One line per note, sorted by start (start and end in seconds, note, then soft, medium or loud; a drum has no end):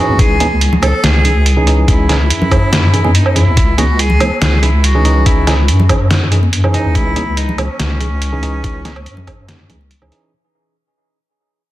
0.00 0.38 E3 medium
0.00 0.38 C#4 medium
0.00 0.38 D#4 medium
0.00 0.21 F#4 loud
0.00 0.38 G#4 loud
0.09 0.18 E2 medium
0.19 0.92 C#2 loud
0.19 0.61 G#4 loud
0.19 kick loud
0.19 closed hi-hat medium
0.40 0.46 E3 loud
0.40 0.46 C#4 medium
0.40 0.46 D#4 medium
0.40 0.46 G#4 loud
0.40 closed hi-hat medium
0.40 high conga medium
0.61 closed hi-hat medium
0.73 low conga medium
0.82 0.88 E3 medium
0.82 0.88 C#4 medium
0.82 0.88 D#4 medium
0.82 0.88 G#4 medium
0.82 1.05 A4 loud
0.82 closed hi-hat medium
0.82 high conga medium
0.82 low woodblock medium
1.04 1.87 C#2 medium
1.04 1.67 G#4 loud
1.04 snare loud
1.04 closed hi-hat medium
1.25 1.31 E3 medium
1.25 1.31 C#4 medium
1.25 1.31 D#4 medium
1.25 1.31 G#4 medium
1.25 closed hi-hat medium
1.46 closed hi-hat medium
1.57 1.65 E3 medium
1.57 1.65 C#4 medium
1.57 1.65 D#4 medium
1.57 1.65 G#4 loud
1.67 2.07 E3 medium
1.67 2.07 C#4 medium
1.67 2.07 D#4 medium
1.67 2.07 G#4 medium
1.67 closed hi-hat medium
1.88 2.32 C#2 loud
1.88 3.17 E4 loud
1.88 kick loud
1.88 closed hi-hat medium
2.09 2.15 E3 medium
2.09 2.15 C#4 medium
2.09 2.15 D#4 medium
2.09 2.15 G#4 loud
2.09 snare medium
2.09 closed hi-hat medium
2.30 3.46 F#2 loud
2.30 closed hi-hat medium
2.42 low conga medium
2.51 2.57 E3 medium
2.51 2.57 C#4 medium
2.51 2.57 D#4 medium
2.51 2.57 G#4 medium
2.51 kick medium
2.51 closed hi-hat medium
2.51 low woodblock medium
2.73 snare loud
2.73 closed hi-hat medium
2.93 3.00 E3 medium
2.93 2.99 C#4 medium
2.93 2.99 D#4 medium
2.93 2.99 G#4 medium
2.93 closed hi-hat medium
3.04 3.10 E3 loud
3.04 3.10 C#4 medium
3.04 3.10 D#4 medium
3.04 3.10 G#4 loud
3.04 high conga medium
3.15 3.37 D#4 medium
3.15 closed hi-hat medium
3.26 low woodblock soft
3.36 3.42 E3 medium
3.36 3.42 C#4 medium
3.36 3.42 D#4 medium
3.36 3.80 E4 loud
3.36 3.42 G#4 medium
3.36 closed hi-hat medium
3.47 3.56 E2 medium
3.57 4.30 C#2 loud
3.57 kick loud
3.57 closed hi-hat medium
3.78 3.84 E3 loud
3.78 3.84 C#4 medium
3.78 3.84 D#4 medium
3.78 4.01 F#4 medium
3.78 3.84 G#4 loud
3.78 closed hi-hat medium
3.78 high conga medium
3.99 4.41 G#4 loud
3.99 closed hi-hat medium
4.10 low conga medium
4.20 4.26 E3 medium
4.20 4.26 C#4 medium
4.20 4.26 D#4 medium
4.20 4.26 G#4 medium
4.20 closed hi-hat medium
4.20 high conga medium
4.20 low woodblock medium
4.42 5.25 C#2 medium
4.42 4.64 G#4 loud
4.42 snare loud
4.42 closed hi-hat medium
4.63 4.69 E3 medium
4.63 4.69 C#4 medium
4.63 4.69 D#4 medium
4.63 4.86 E4 medium
4.63 4.69 G#4 medium
4.63 closed hi-hat medium
4.84 5.28 F#4 loud
4.84 closed hi-hat medium
4.95 5.03 E3 medium
4.95 5.03 C#4 medium
4.95 5.03 D#4 medium
4.95 5.03 G#4 loud
5.05 5.45 E3 medium
5.05 5.45 C#4 medium
5.05 5.45 D#4 medium
5.05 5.45 G#4 loud
5.05 closed hi-hat medium
5.26 5.68 E4 medium
5.26 kick loud
5.26 closed hi-hat medium
5.47 5.53 E3 loud
5.47 5.53 C#4 medium
5.47 5.53 D#4 medium
5.47 5.53 G#4 loud
5.47 snare medium
5.47 closed hi-hat medium
5.68 6.84 F#2 loud
5.68 closed hi-hat medium
5.80 low conga medium
5.89 5.95 E3 medium
5.89 5.95 C#4 medium
5.89 5.95 D#4 medium
5.89 5.95 G#4 medium
5.89 kick medium
5.89 closed hi-hat soft
5.89 low woodblock medium
6.11 snare loud
6.11 closed hi-hat medium
6.32 6.38 E3 medium
6.32 6.38 C#4 medium
6.32 6.38 D#4 medium
6.32 6.38 G#4 medium
6.32 closed hi-hat medium
6.43 high conga medium
6.53 closed hi-hat medium
6.64 6.72 E3 loud
6.64 6.72 C#4 medium
6.64 6.72 D#4 medium
6.64 6.72 G#4 loud
6.64 low woodblock medium
6.74 7.14 E3 medium
6.74 7.14 C#4 medium
6.74 7.14 D#4 medium
6.74 6.96 D#4 loud
6.74 7.14 G#4 loud
6.74 closed hi-hat soft
6.85 6.94 E2 medium
6.95 7.68 C#2 loud
6.95 7.39 E4 loud
6.95 kick loud
6.95 closed hi-hat medium
7.16 7.22 E3 loud
7.16 7.22 C#4 medium
7.16 7.22 D#4 medium
7.16 7.22 G#4 loud
7.16 closed hi-hat medium
7.16 high conga medium
7.37 7.60 D#4 loud
7.37 closed hi-hat medium
7.49 low conga medium
7.58 7.64 E3 medium
7.58 7.64 C#4 medium
7.58 9.91 C#4 loud
7.58 7.64 D#4 medium
7.58 7.64 G#4 medium
7.58 closed hi-hat medium
7.58 high conga medium
7.58 low woodblock medium
7.80 8.63 C#2 medium
7.80 snare loud
7.80 closed hi-hat medium
8.00 8.07 E3 medium
8.00 8.06 C#4 medium
8.00 8.06 D#4 medium
8.00 8.07 G#4 medium
8.00 closed hi-hat medium
8.22 closed hi-hat medium
8.33 8.41 E3 medium
8.33 8.41 C#4 medium
8.33 8.41 D#4 medium
8.33 8.41 G#4 loud
8.43 8.83 E3 medium
8.43 8.83 C#4 medium
8.43 8.83 D#4 medium
8.43 8.83 G#4 medium
8.43 closed hi-hat medium
8.64 9.08 C#2 loud
8.64 kick loud
8.64 closed hi-hat medium
8.85 8.91 E3 loud
8.85 8.91 C#4 medium
8.85 8.91 D#4 medium
8.85 8.91 G#4 loud
8.85 snare medium
8.85 closed hi-hat medium
8.85 high conga medium
8.96 low woodblock medium
9.06 9.71 F#2 loud
9.06 closed hi-hat medium
9.17 low conga medium
9.27 9.33 E3 medium
9.27 9.33 C#4 medium
9.27 9.33 D#4 medium
9.27 9.33 G#4 medium
9.27 kick medium
9.27 closed hi-hat medium
9.27 low woodblock medium
9.49 snare loud
9.49 closed hi-hat medium
9.69 10.11 C#2 loud
9.69 9.76 E3 medium
9.69 9.76 C#4 medium
9.69 9.76 D#4 medium
9.69 9.76 G#4 medium
9.69 closed hi-hat medium
9.69 low conga medium
9.81 high conga medium
9.91 closed hi-hat medium
10.02 10.10 E3 medium
10.02 10.10 C#4 medium
10.02 10.10 D#4 medium
10.02 10.10 G#4 loud
10.02 low woodblock medium
10.12 10.32 E3 medium
10.12 10.32 C#4 medium
10.12 10.32 D#4 medium
10.12 10.32 G#4 medium
10.12 closed hi-hat medium